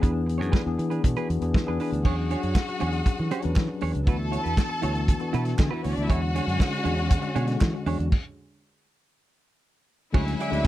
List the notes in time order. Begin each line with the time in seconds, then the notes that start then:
0.02 E2 E3 B3 D4 G#4 B4, kick, closed hi-hat
0.14 muted clean electric guitar stroke
0.26 muted clean electric guitar stroke, closed hi-hat
0.38 F#2 E3 B3 D4 G#4 C#5
0.42 closed hi-hat
0.52 D4 G#4 B4, kick, snare
0.64 E2 E3 B3 D4 G#4, muted clean electric guitar stroke
0.78 E3, muted clean electric guitar stroke, closed hi-hat
0.90 D4 G#4 B4, closed hi-hat
1.03 B2 E3 B3 D4 F#4, muted clean electric guitar stroke, kick, closed hi-hat
1.16 D4 G#4 B4, closed hi-hat
1.30 E2, muted clean electric guitar stroke, closed hi-hat
1.41 E2 E3 B3 D4 G#4, muted clean electric guitar stroke, closed hi-hat
1.54 E3, muted clean electric guitar stroke, kick, snare
1.65 E2 E3 B3 D4 G#4 B4
1.80 D4 G#4 B4, open hi-hat
1.92 D2, muted clean electric guitar stroke, closed hi-hat
2.04 E2 F#3 C#4 D4 F#4 G#4 C#5 F#5, kick, crash
2.18 muted clean electric guitar stroke
2.30 D4 G#4 C#5, closed hi-hat
2.43 F#2 D4 G#4 C#5, closed hi-hat
2.55 kick, snare, clap
2.68 muted clean electric guitar stroke, closed hi-hat
2.79 E2 F#3 C#4 D4 G4 G#4 C#5, closed hi-hat
2.86 G#4
2.93 muted clean electric guitar stroke, closed hi-hat
3.06 muted clean electric guitar stroke, kick, closed hi-hat
3.17 E3, muted clean electric guitar stroke, closed hi-hat
3.31 D4 G#4 C#5, closed hi-hat
3.42 E2 F#3 C#4 D4 B4, muted clean electric guitar stroke, closed hi-hat
3.56 E3, kick, snare, clap
3.68 muted clean electric guitar stroke
3.81 E2 D4 G#4 C#5, open hi-hat
3.94 C#2, muted clean electric guitar stroke, closed hi-hat
4.05 D2 E3 B3 D4 E4 F#4 A4 B4 A5, kick, closed hi-hat
4.19 muted clean electric guitar stroke
4.31 E4 F#4 C#5, closed hi-hat
4.43 E2 E4 F#4 B4, closed hi-hat
4.56 muted clean electric guitar stroke, kick, snare, clap
4.69 muted clean electric guitar stroke
4.81 D2 E3 B3 D4 E4 F#4 C#5, closed hi-hat
4.95 muted clean electric guitar stroke, closed hi-hat
5.08 muted clean electric guitar stroke, kick, closed hi-hat
5.19 E3 B3 D4 F#4, muted clean electric guitar stroke, closed hi-hat
5.33 B2 E4 F#4 B4, closed hi-hat
5.45 muted clean electric guitar stroke, snare, closed hi-hat
5.58 D3 G#3 G#4, muted clean electric guitar stroke, kick, snare, clap
5.67 A3 A4 B4
5.71 B3 E4 F#4 B4
5.84 D2 C#4 E4 F#4 C#5, open hi-hat
5.92 D4 D5
5.97 D2, muted clean electric guitar stroke, closed hi-hat
6.02 E4 E5
6.08 E2 D3 G#3 C#4 D4 F#4 G#4 C#5 F#5, kick, closed hi-hat
6.23 muted clean electric guitar stroke
6.35 D4 G#4 C#5, closed hi-hat
6.47 F#2 D4 G#4 C#5, closed hi-hat
6.60 muted clean electric guitar stroke, kick, snare, clap
6.72 muted clean electric guitar stroke, closed hi-hat
6.84 E2 D3 G#3 C#4 D4 F#4 G#4 C#5, closed hi-hat
6.98 muted clean electric guitar stroke, closed hi-hat
7.10 muted clean electric guitar stroke, kick, closed hi-hat
7.22 muted clean electric guitar stroke, closed hi-hat
7.35 B2 D4 G#4 C#5, closed hi-hat
7.47 D3 G#3 C#4 F#4, muted clean electric guitar stroke, snare, closed hi-hat
7.61 E3, kick, snare, clap
7.74 muted clean electric guitar stroke
7.86 E2 D4 G#4 C#5, open hi-hat
8.00 E2, muted clean electric guitar stroke, closed hi-hat
8.12 kick, crash
10.12 D2 D3 F#3 G#3 C#4 E4 F#4 G#4 C#5 E5 G#5, kick, crash
10.27 muted clean electric guitar stroke, closed hi-hat
10.40 F#4 G#4 D5, closed hi-hat
10.50 D2 D3 F#3 G#3 C#4 E4 F#4 G#4 D5, closed hi-hat